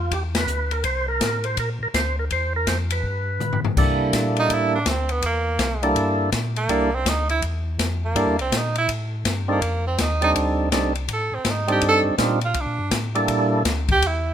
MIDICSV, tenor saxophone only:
0, 0, Header, 1, 2, 480
1, 0, Start_track
1, 0, Tempo, 366077
1, 1107, Time_signature, 4, 2, 24, 8
1, 18800, End_track
2, 0, Start_track
2, 0, Title_t, "Tenor saxophone"
2, 0, Program_c, 0, 66
2, 5762, Note_on_c, 0, 63, 88
2, 5949, Note_on_c, 0, 64, 88
2, 5969, Note_off_c, 0, 63, 0
2, 6220, Note_off_c, 0, 64, 0
2, 6228, Note_on_c, 0, 62, 75
2, 6409, Note_on_c, 0, 60, 71
2, 6429, Note_off_c, 0, 62, 0
2, 6696, Note_on_c, 0, 59, 79
2, 6716, Note_off_c, 0, 60, 0
2, 6863, Note_off_c, 0, 59, 0
2, 6889, Note_on_c, 0, 58, 77
2, 7780, Note_off_c, 0, 58, 0
2, 8615, Note_on_c, 0, 58, 84
2, 9109, Note_on_c, 0, 60, 83
2, 9128, Note_off_c, 0, 58, 0
2, 9287, Note_on_c, 0, 63, 78
2, 9306, Note_off_c, 0, 60, 0
2, 9565, Note_off_c, 0, 63, 0
2, 9573, Note_on_c, 0, 64, 93
2, 9728, Note_off_c, 0, 64, 0
2, 10550, Note_on_c, 0, 58, 72
2, 10983, Note_off_c, 0, 58, 0
2, 11027, Note_on_c, 0, 60, 80
2, 11239, Note_on_c, 0, 63, 73
2, 11258, Note_off_c, 0, 60, 0
2, 11505, Note_off_c, 0, 63, 0
2, 11512, Note_on_c, 0, 64, 96
2, 11659, Note_off_c, 0, 64, 0
2, 12465, Note_on_c, 0, 58, 75
2, 12901, Note_off_c, 0, 58, 0
2, 12943, Note_on_c, 0, 60, 78
2, 13131, Note_on_c, 0, 63, 76
2, 13151, Note_off_c, 0, 60, 0
2, 13414, Note_off_c, 0, 63, 0
2, 13421, Note_on_c, 0, 63, 93
2, 13520, Note_off_c, 0, 63, 0
2, 14592, Note_on_c, 0, 69, 76
2, 14874, Note_on_c, 0, 60, 69
2, 14893, Note_off_c, 0, 69, 0
2, 15084, Note_on_c, 0, 63, 73
2, 15104, Note_off_c, 0, 60, 0
2, 15359, Note_off_c, 0, 63, 0
2, 15365, Note_on_c, 0, 67, 87
2, 15508, Note_off_c, 0, 67, 0
2, 15582, Note_on_c, 0, 69, 94
2, 15742, Note_off_c, 0, 69, 0
2, 16321, Note_on_c, 0, 65, 79
2, 16527, Note_on_c, 0, 62, 70
2, 16547, Note_off_c, 0, 65, 0
2, 16976, Note_off_c, 0, 62, 0
2, 18249, Note_on_c, 0, 67, 103
2, 18446, Note_on_c, 0, 64, 75
2, 18466, Note_off_c, 0, 67, 0
2, 18800, Note_off_c, 0, 64, 0
2, 18800, End_track
0, 0, End_of_file